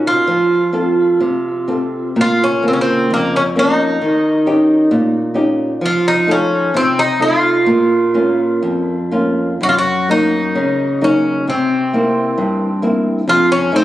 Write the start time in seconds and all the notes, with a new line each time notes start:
Already playing: A#2 C#4 D#4 F#4
0.07 F4
0.27 F3
0.73 C4 F4 A4
1.20 C3
1.68 C4 F4 A4
2.16 A#2
2.21 F4
2.44 C#4
2.62 C#3 A#3 C4
2.68 C4
2.73 C#4
2.81 C4
3.10 F2 A#3
3.36 C#4
3.56 A#3 C4 C#4 D#4
4.01 D#3
4.46 C#4 D#4 G4
4.91 A#2
5.34 C#4 D#4 G4
5.81 F3
5.86 F4
6.08 D#4
6.27 D#4 F4 A4
6.31 C#4
6.74 C3 C4
6.99 D#4
7.20 D#4 F4 A4
7.66 A#2
8.14 A#3 C#4 F4
8.63 F2
9.11 A#3 C#4 F4
9.61 F#2 F#4
9.69 F4
9.78 F#4
10.08 F#3 A#3 D#4
10.55 C#3
11.01 F#3 A#3 C#4 D#4
11.47 C3 C4
11.93 A#3 C4 E4
12.38 G2
12.82 A#3 C4 E4
13.28 F2 F4
13.52 C#4
13.72 F3 A3 D#4
13.76 C4